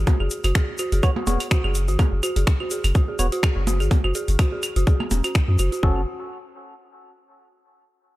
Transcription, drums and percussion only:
0.07 kick loud
0.07 closed hi-hat soft
0.07 percussion blips loud
0.07 shaker soft
0.20 claves soft
0.30 open hi-hat loud
0.30 shaker medium
0.44 closed hi-hat medium
0.44 claves medium
0.44 shaker medium
0.55 finger snap loud
0.55 kick loud
0.55 closed hi-hat soft
0.55 shaker soft
0.78 open hi-hat loud
0.78 claves soft
0.78 shaker medium
0.92 closed hi-hat medium
0.92 shaker soft
1.03 kick loud
1.03 closed hi-hat soft
1.03 claves medium
1.03 shaker soft
1.16 percussion blips medium
1.27 open hi-hat loud
1.27 percussion blips medium
1.27 shaker medium
1.40 closed hi-hat medium
1.40 claves soft
1.40 shaker soft
1.51 finger snap loud
1.51 kick loud
1.51 open hi-hat soft
1.51 shaker soft
1.64 claves medium
1.75 open hi-hat loud
1.75 shaker medium
1.88 open hi-hat soft
1.88 shaker medium
1.99 kick loud
1.99 closed hi-hat soft
1.99 percussion blips loud
1.99 claves soft
1.99 shaker soft
2.23 open hi-hat loud
2.23 claves medium
2.23 shaker medium
2.36 closed hi-hat medium
2.36 shaker medium
2.47 finger snap medium
2.47 kick loud
2.47 closed hi-hat soft
2.47 shaker soft
2.60 claves soft
2.71 open hi-hat loud
2.71 shaker loud
2.84 closed hi-hat medium
2.84 claves medium
2.84 shaker medium
2.95 kick loud
2.95 closed hi-hat soft
2.95 shaker soft
3.19 open hi-hat loud
3.19 claves soft
3.19 shaker loud
3.32 closed hi-hat medium
3.32 shaker soft
3.43 finger snap loud
3.43 kick loud
3.43 open hi-hat soft
3.43 claves medium
3.43 shaker soft
3.67 open hi-hat loud
3.67 percussion blips medium
3.67 shaker loud
3.80 open hi-hat soft
3.80 claves soft
3.80 shaker medium
3.91 kick loud
3.91 closed hi-hat soft
3.91 percussion blips medium
3.91 shaker soft
4.04 claves medium
4.15 open hi-hat medium
4.15 shaker loud
4.28 closed hi-hat medium
4.28 shaker medium
4.39 finger snap medium
4.39 kick loud
4.39 closed hi-hat soft
4.39 claves soft
4.39 shaker soft
4.63 open hi-hat loud
4.63 claves medium
4.63 shaker medium
4.76 closed hi-hat soft
4.76 shaker medium
4.87 kick loud
4.87 closed hi-hat soft
4.87 shaker soft
5.00 percussion blips medium
5.00 claves soft
5.11 open hi-hat loud
5.11 percussion blips medium
5.11 shaker medium
5.24 closed hi-hat medium
5.24 claves medium
5.24 shaker medium
5.35 finger snap medium
5.35 kick loud
5.35 open hi-hat soft
5.35 shaker soft
5.59 open hi-hat loud
5.59 claves soft
5.59 shaker medium
5.72 open hi-hat soft
5.72 shaker medium
5.83 kick loud

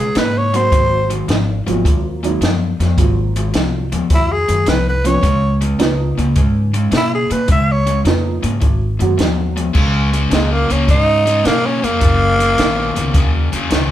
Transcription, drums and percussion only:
0.15 snare loud
0.15 closed hi-hat medium
0.54 closed hi-hat medium
0.72 kick loud
0.72 closed hi-hat medium
1.10 closed hi-hat medium
1.29 snare loud
1.29 closed hi-hat medium
1.68 closed hi-hat soft
1.85 kick loud
1.85 closed hi-hat medium
2.24 closed hi-hat medium
2.42 snare loud
2.42 closed hi-hat medium
2.80 snare soft
2.80 closed hi-hat medium
2.98 kick loud
2.98 closed hi-hat medium
3.36 closed hi-hat medium
3.54 snare loud
3.54 closed hi-hat medium
3.92 closed hi-hat medium
4.10 kick loud
4.10 closed hi-hat medium
4.49 closed hi-hat medium
4.66 snare loud
4.66 closed hi-hat medium
5.05 closed hi-hat medium
5.23 kick loud
5.23 closed hi-hat medium
5.62 closed hi-hat soft
5.80 snare medium
5.80 closed hi-hat medium
6.19 closed hi-hat medium
6.36 kick loud
6.36 closed hi-hat medium
6.74 closed hi-hat medium
6.92 snare loud
6.92 closed hi-hat medium
7.31 closed hi-hat medium
7.48 kick loud
7.48 closed hi-hat medium
7.87 closed hi-hat medium
8.05 snare loud
8.05 closed hi-hat medium
8.44 closed hi-hat medium
8.62 kick loud
8.62 closed hi-hat medium
9.00 closed hi-hat medium
9.19 snare loud
9.19 closed hi-hat medium
9.57 closed hi-hat medium
9.75 kick loud
9.75 crash medium
10.13 closed hi-hat medium
10.31 snare loud
10.31 closed hi-hat medium
10.70 closed hi-hat medium
10.88 kick loud
10.88 closed hi-hat medium
11.27 closed hi-hat medium
11.45 snare loud
11.45 closed hi-hat medium
11.84 closed hi-hat medium
12.01 kick loud
12.01 closed hi-hat medium
12.40 closed hi-hat medium
12.58 snare loud
12.58 closed hi-hat medium
12.96 closed hi-hat medium
13.14 kick loud
13.14 closed hi-hat medium
13.53 closed hi-hat medium
13.71 snare loud
13.71 closed hi-hat medium

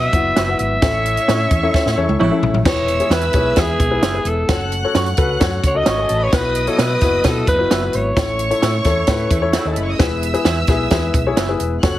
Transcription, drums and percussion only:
0.13 kick loud
0.13 closed hi-hat medium
0.36 snare loud
0.36 closed hi-hat loud
0.59 closed hi-hat medium
0.82 kick loud
0.82 snare loud
0.82 closed hi-hat medium
1.05 closed hi-hat medium
1.17 closed hi-hat medium
1.29 snare loud
1.29 closed hi-hat medium
1.51 kick medium
1.51 closed hi-hat medium
1.74 kick loud
1.74 snare medium
1.86 snare medium
2.09 high tom medium
2.21 mid tom medium
2.43 floor tom loud
2.54 floor tom medium
2.65 kick loud
2.65 snare loud
2.65 crash loud
2.88 closed hi-hat medium
3.00 closed hi-hat medium
3.11 snare loud
3.11 closed hi-hat loud
3.21 closed hi-hat medium
3.33 kick medium
3.33 closed hi-hat medium
3.56 kick loud
3.56 snare loud
3.56 closed hi-hat medium
3.80 kick loud
3.80 closed hi-hat medium
4.03 snare loud
4.03 closed hi-hat loud
4.25 closed hi-hat medium
4.49 kick loud
4.49 snare loud
4.49 closed hi-hat medium
4.72 closed hi-hat medium
4.95 snare loud
4.95 closed hi-hat medium
5.06 closed hi-hat medium
5.17 kick loud
5.17 closed hi-hat medium
5.40 kick loud
5.40 snare loud
5.40 closed hi-hat medium
5.64 kick loud
5.64 closed hi-hat medium
5.86 snare loud
5.86 closed hi-hat loud
6.09 closed hi-hat medium
6.32 kick loud
6.32 snare loud
6.32 closed hi-hat loud
6.55 closed hi-hat medium
6.67 closed hi-hat medium
6.79 snare loud
6.79 closed hi-hat medium
7.01 kick loud
7.01 snare soft
7.01 closed hi-hat medium
7.24 kick loud
7.24 snare loud
7.24 closed hi-hat medium
7.47 kick loud
7.47 closed hi-hat medium
7.71 snare loud
7.71 closed hi-hat medium
7.93 closed hi-hat medium
8.17 kick loud
8.17 snare loud
8.17 closed hi-hat medium
8.39 closed hi-hat medium
8.51 closed hi-hat medium
8.62 snare loud
8.62 closed hi-hat medium
8.84 kick loud
8.84 snare soft
8.84 closed hi-hat medium
9.07 kick loud
9.07 snare loud
9.07 closed hi-hat medium
9.31 kick loud
9.31 closed hi-hat medium
9.53 snare loud
9.53 closed hi-hat loud
9.76 closed hi-hat medium
10.00 kick loud
10.00 snare loud
10.00 closed hi-hat medium
10.23 closed hi-hat medium
10.34 closed hi-hat medium
10.45 snare loud
10.45 closed hi-hat medium
10.67 kick loud
10.67 snare soft
10.67 closed hi-hat medium
10.90 kick medium
10.90 snare loud
10.90 closed hi-hat medium
11.14 kick loud
11.14 closed hi-hat medium
11.37 snare loud
11.37 closed hi-hat loud
11.60 closed hi-hat medium
11.83 kick loud
11.83 snare loud
11.83 closed hi-hat loud

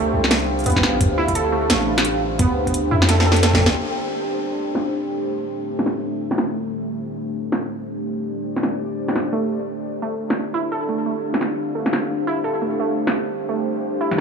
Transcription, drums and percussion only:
0.24 snare medium
0.31 snare loud
0.31 snare medium
0.31 closed hi-hat medium
0.59 closed hi-hat soft
0.64 closed hi-hat soft
0.66 closed hi-hat medium
0.70 closed hi-hat soft
0.72 closed hi-hat soft
0.76 kick loud
0.76 snare medium
0.83 snare medium
1.01 kick loud
1.01 closed hi-hat medium
1.28 kick medium
1.28 closed hi-hat soft
1.35 closed hi-hat medium
1.70 snare loud
1.70 closed hi-hat medium
1.98 snare medium
1.98 closed hi-hat soft
2.05 closed hi-hat medium
2.39 kick loud
2.39 closed hi-hat medium
2.67 kick medium
2.67 closed hi-hat soft
2.74 closed hi-hat medium
3.02 snare medium
3.09 snare medium
3.09 closed hi-hat medium
3.20 snare medium
3.32 snare medium
3.36 closed hi-hat soft
3.43 snare medium
3.43 closed hi-hat medium
3.54 kick loud
3.54 snare medium
3.61 kick medium
3.66 snare loud
4.75 snare medium
5.79 snare medium
5.86 snare medium
6.31 snare medium
6.38 snare medium
7.52 snare medium
8.56 snare medium
8.63 snare medium
9.08 snare medium
9.16 snare medium
10.30 snare medium
11.34 snare medium
11.41 snare medium
11.86 snare medium
11.93 snare medium
13.07 snare medium
14.11 snare medium

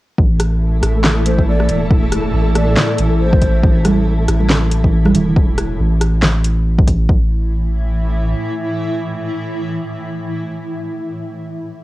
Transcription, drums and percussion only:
0.18 kick loud
0.40 cross-stick medium
0.40 closed hi-hat medium
0.83 cross-stick medium
0.83 closed hi-hat medium
1.04 snare loud
1.04 clap medium
1.26 closed hi-hat medium
1.39 kick medium
1.60 cross-stick medium
1.69 closed hi-hat medium
1.91 kick loud
2.12 cross-stick medium
2.12 closed hi-hat medium
2.55 cross-stick medium
2.55 closed hi-hat medium
2.77 snare loud
2.77 clap medium
2.98 closed hi-hat medium
3.33 kick loud
3.42 kick medium
3.42 closed hi-hat medium
3.63 kick loud
3.85 cross-stick medium
3.85 closed hi-hat medium
3.85 high conga loud
4.28 cross-stick medium
4.28 closed hi-hat medium
4.40 high conga medium
4.50 snare loud
4.50 clap medium
4.71 closed hi-hat medium
4.84 kick medium
5.05 cross-stick medium
5.05 high conga loud
5.15 closed hi-hat medium
5.15 low conga loud
5.28 low conga medium
5.36 kick loud
5.58 cross-stick medium
5.58 closed hi-hat medium
6.01 cross-stick medium
6.01 closed hi-hat medium
6.22 snare loud
6.22 clap medium
6.44 closed hi-hat medium
6.78 kick loud
6.87 kick medium
6.87 closed hi-hat medium
7.09 kick loud

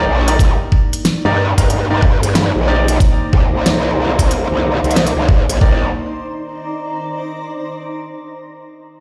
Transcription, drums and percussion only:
0.28 closed hi-hat medium
0.39 kick loud
0.39 closed hi-hat medium
0.72 kick loud
0.93 closed hi-hat medium
1.05 snare loud
1.05 closed hi-hat medium
1.58 kick medium
1.58 closed hi-hat medium
1.70 closed hi-hat medium
2.02 kick loud
2.23 closed hi-hat medium
2.29 cross-stick medium
2.35 snare loud
2.35 closed hi-hat medium
2.88 closed hi-hat medium
3.00 kick loud
3.00 closed hi-hat medium
3.33 kick loud
3.66 snare loud
3.66 closed hi-hat medium
4.19 kick medium
4.19 cross-stick soft
4.19 closed hi-hat medium
4.31 closed hi-hat medium
4.84 closed hi-hat soft
4.91 closed hi-hat soft
4.96 snare loud
4.96 closed hi-hat medium
5.07 closed hi-hat medium
5.17 cross-stick soft
5.29 kick loud
5.50 closed hi-hat medium
5.61 kick loud

